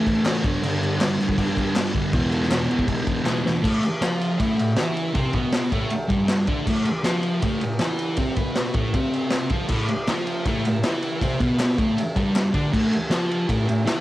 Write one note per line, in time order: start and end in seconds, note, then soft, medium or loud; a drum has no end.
0.00 0.24 A2 medium
0.00 0.24 E3 loud
0.00 0.26 A3 loud
0.07 kick medium
0.07 crash medium
0.25 0.43 A2 medium
0.25 0.43 E3 loud
0.25 0.44 A3 loud
0.25 snare loud
0.25 clap loud
0.25 crash loud
0.43 0.62 G2 loud
0.43 0.62 D3 loud
0.43 0.64 G3 loud
0.43 kick loud
0.43 crash medium
0.63 0.99 G2 loud
0.63 0.99 D3 loud
0.63 1.00 G3 loud
0.63 crash loud
0.83 crash medium
1.00 1.18 G2 medium
1.00 1.19 D3 medium
1.00 1.20 G3 loud
1.00 snare loud
1.00 clap loud
1.00 crash medium
1.20 1.36 G2 medium
1.20 1.37 D3 loud
1.20 1.38 G3 loud
1.20 snare soft
1.20 crash medium
1.29 kick medium
1.38 1.74 G2 loud
1.38 1.75 D3 loud
1.38 1.76 G3 loud
1.38 kick loud
1.38 crash medium
1.57 kick medium
1.57 crash medium
1.75 1.93 G2 medium
1.75 1.94 D3 loud
1.75 1.95 G3 loud
1.75 snare loud
1.75 clap medium
1.75 crash loud
1.94 2.12 G2 medium
1.94 2.12 D3 loud
1.94 2.13 G3 loud
1.94 kick medium
1.94 crash medium
2.13 2.48 E2 loud
2.13 2.49 B2 loud
2.13 2.49 E3 loud
2.13 kick loud
2.13 crash medium
2.32 crash medium
2.42 snare soft
2.49 2.68 E2 medium
2.49 2.69 B2 medium
2.49 2.69 E3 medium
2.49 snare loud
2.49 clap medium
2.49 crash medium
2.69 2.86 E2 loud
2.69 2.87 B2 loud
2.69 2.88 E3 loud
2.69 crash medium
2.79 kick medium
2.88 3.23 E2 loud
2.88 3.23 B2 loud
2.88 3.24 E3 loud
2.88 kick loud
2.88 crash medium
3.07 kick medium
3.07 crash medium
3.24 3.43 E2 medium
3.24 3.44 B2 medium
3.24 3.45 E3 medium
3.24 snare medium
3.24 clap medium
3.44 3.62 E2 medium
3.44 3.61 B2 loud
3.44 3.63 E3 loud
3.44 snare medium
3.62 3.80 A2 loud
3.62 3.82 A3 loud
3.62 kick loud
3.62 crash loud
3.82 muted distorted electric guitar stroke medium
3.82 ride medium
4.01 4.39 F3 medium
4.01 4.39 F4 medium
4.01 snare loud
4.01 clap medium
4.01 ride loud
4.21 ride medium
4.40 4.56 A2 medium
4.40 4.58 A3 medium
4.40 kick loud
4.40 ride loud
4.57 4.73 A2 medium
4.57 ride medium
4.76 5.13 E3 medium
4.76 5.14 E4 loud
4.76 snare loud
4.76 clap loud
4.76 ride medium
4.97 ride medium
5.14 5.33 C3 medium
5.14 5.33 C4 loud
5.14 kick medium
5.14 ride medium
5.33 5.71 B2 medium
5.33 5.72 B3 loud
5.33 kick loud
5.33 ride medium
5.52 snare loud
5.52 clap medium
5.52 ride loud
5.72 5.90 A2 loud
5.72 5.91 A3 loud
5.72 kick loud
5.72 ride medium
5.90 muted distorted electric guitar stroke medium
5.90 ride loud
6.08 6.46 G2 medium
6.08 6.47 G3 loud
6.08 kick loud
6.08 ride medium
6.28 snare loud
6.28 clap loud
6.28 ride loud
6.47 6.66 D3 loud
6.47 6.66 D4 loud
6.47 kick loud
6.47 ride medium
6.66 6.84 A2 loud
6.66 6.86 A3 loud
6.66 kick loud
6.66 crash loud
6.85 muted distorted electric guitar stroke medium
6.85 ride medium
7.03 7.41 F3 medium
7.03 7.42 F4 loud
7.03 snare loud
7.03 clap loud
7.03 ride loud
7.23 ride medium
7.42 7.60 A2 medium
7.42 7.61 A3 loud
7.42 kick loud
7.42 ride loud
7.61 7.76 A2 medium
7.61 ride medium
7.79 8.17 E3 loud
7.79 8.18 E4 loud
7.79 snare loud
7.79 clap loud
7.79 ride loud
7.99 ride medium
8.17 8.37 C3 medium
8.17 8.38 C4 loud
8.17 kick loud
8.17 ride loud
8.36 8.74 B2 loud
8.36 8.75 B3 loud
8.36 kick loud
8.36 ride medium
8.55 snare loud
8.55 clap loud
8.55 ride medium
8.74 8.93 A2 medium
8.74 8.94 A3 loud
8.74 kick loud
8.74 ride medium
8.94 9.50 C3 medium
8.94 9.51 C4 loud
8.94 kick loud
8.94 ride medium
9.13 ride medium
9.30 snare loud
9.30 clap loud
9.30 ride loud
9.50 9.68 F3 medium
9.50 9.69 F4 medium
9.50 kick loud
9.50 ride medium
9.68 9.88 A2 loud
9.68 9.88 A3 medium
9.68 kick loud
9.68 crash medium
9.88 muted distorted electric guitar stroke medium
9.88 ride medium
10.07 10.45 F3 loud
10.07 10.46 F4 loud
10.07 snare loud
10.07 clap loud
10.07 ride loud
10.27 ride medium
10.45 10.65 A2 medium
10.45 10.65 A3 medium
10.45 kick loud
10.45 ride loud
10.65 10.81 A2 medium
10.65 ride medium
10.83 11.21 E3 medium
10.83 11.22 E4 loud
10.83 snare loud
10.83 clap loud
10.83 ride loud
11.03 ride medium
11.22 11.39 C3 medium
11.22 11.40 C4 loud
11.22 kick loud
11.22 ride loud
11.39 11.77 B2 medium
11.39 11.78 B3 loud
11.39 kick loud
11.39 ride medium
11.60 snare loud
11.60 clap loud
11.60 ride loud
11.77 11.96 A2 medium
11.77 11.97 A3 loud
11.77 kick loud
11.77 ride medium
11.98 muted distorted electric guitar stroke medium
11.98 ride medium
12.16 12.53 G2 loud
12.16 12.54 G3 medium
12.16 kick loud
12.16 ride medium
12.36 snare loud
12.36 clap loud
12.36 ride loud
12.53 12.72 D3 loud
12.53 12.72 D4 loud
12.53 kick loud
12.53 ride medium
12.73 12.91 A2 loud
12.73 12.92 A3 loud
12.73 kick loud
12.73 crash loud
12.92 muted distorted electric guitar stroke medium
12.92 ride medium
13.10 13.48 F3 medium
13.10 13.49 F4 loud
13.10 snare loud
13.10 clap loud
13.10 ride loud
13.31 ride medium
13.48 13.67 A2 medium
13.48 13.68 A3 loud
13.48 kick loud
13.48 ride loud
13.68 13.83 A2 medium
13.68 ride medium
13.86 14.01 E3 medium
13.86 14.01 E4 loud
13.86 snare loud
13.86 clap medium
13.86 ride loud